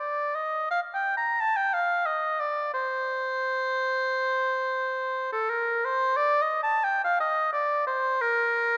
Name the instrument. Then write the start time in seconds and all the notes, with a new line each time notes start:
oboe
0.00 D5
0.35 D#5
0.71 F5
0.94 G5
1.17 A#5
1.40 A5
1.57 G5
1.74 F5
2.06 D#5
2.40 D5
2.74 C5
5.32 A4
5.50 A#4
5.85 C5
6.17 D5
6.42 D#5
6.63 A5
6.84 G5
7.04 F5
7.20 D#5
7.53 D5
7.87 C5
8.21 A#4